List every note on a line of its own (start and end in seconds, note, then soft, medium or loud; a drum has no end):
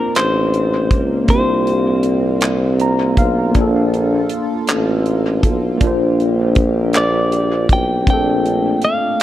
0.00 0.12 A#1 loud
0.00 1.23 A#3 medium
0.00 3.51 A#3 medium
0.00 1.24 C4 medium
0.00 1.27 C4 medium
0.00 1.26 D4 medium
0.00 1.27 F4 medium
0.00 0.13 A#4 medium
0.15 0.88 A1 medium
0.15 1.25 C5 medium
0.15 clap loud
0.15 closed hi-hat medium
0.54 closed hi-hat soft
0.91 1.25 C#2 medium
0.91 kick medium
0.91 closed hi-hat medium
1.25 3.49 A#3 medium
1.25 3.52 C4 medium
1.25 3.51 D4 medium
1.25 8.04 F4 medium
1.25 kick loud
1.25 closed hi-hat medium
1.30 3.14 C2 loud
1.30 1.36 E4 soft
1.30 2.76 C5 medium
1.35 3.55 F4 soft
1.35 3.54 G4 medium
1.67 closed hi-hat soft
2.03 closed hi-hat medium
2.41 clap loud
2.41 closed hi-hat medium
2.80 3.15 A#5 medium
2.80 closed hi-hat soft
3.17 3.52 B1 medium
3.17 3.53 F5 medium
3.17 kick loud
3.17 closed hi-hat medium
3.51 5.75 A#3 medium
3.51 9.23 A#3 medium
3.51 5.77 D4 medium
3.51 kick medium
3.51 closed hi-hat medium
3.56 4.38 A#1 loud
3.56 5.79 F4 medium
3.56 5.79 A4 medium
3.61 5.80 A4 medium
3.94 closed hi-hat soft
4.29 closed hi-hat medium
4.67 5.41 A1 loud
4.67 clap loud
4.67 closed hi-hat medium
5.06 closed hi-hat soft
5.43 5.78 B1 medium
5.43 kick loud
5.43 closed hi-hat medium
5.77 8.02 A#3 medium
5.77 8.03 D4 medium
5.77 kick loud
5.77 closed hi-hat medium
5.81 7.66 A#1 loud
5.81 8.05 F4 medium
5.81 8.05 G4 medium
5.87 8.06 C5 medium
6.20 closed hi-hat soft
6.55 kick loud
6.55 closed hi-hat medium
6.93 clap loud
6.93 closed hi-hat medium
6.97 7.72 D5 loud
7.32 closed hi-hat soft
7.69 8.04 B1 medium
7.69 8.09 G5 loud
7.69 kick loud
7.69 closed hi-hat medium
8.04 9.23 A3 medium
8.04 9.23 C4 medium
8.04 9.23 D4 medium
8.04 kick loud
8.04 closed hi-hat medium
8.08 8.90 A#1 loud
8.08 9.23 F4 soft
8.08 8.84 G5 loud
8.13 9.23 A4 medium
8.46 closed hi-hat soft
8.82 9.23 F5 medium
8.82 closed hi-hat medium